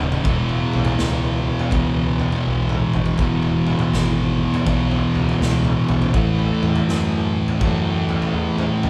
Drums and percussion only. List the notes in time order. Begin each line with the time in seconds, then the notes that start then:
0.12 floor tom, mid tom
0.24 kick, floor tom
0.49 floor tom
0.73 mid tom
0.85 floor tom
0.99 snare
1.59 floor tom
1.71 kick, floor tom
2.20 floor tom
2.32 floor tom
2.69 mid tom
2.93 floor tom, mid tom
3.06 mid tom
3.18 kick, floor tom
3.43 floor tom
3.67 mid tom
3.79 floor tom
3.94 snare
4.54 floor tom
4.67 kick, floor tom
4.91 floor tom
5.15 floor tom
5.29 floor tom
5.42 snare
5.65 mid tom
5.89 floor tom, mid tom
6.02 floor tom, mid tom
6.14 kick, floor tom
6.39 floor tom
6.63 mid tom
6.76 floor tom
6.89 snare
7.48 floor tom
7.61 kick, floor tom
8.09 floor tom
8.22 floor tom
8.58 mid tom
8.83 floor tom, mid tom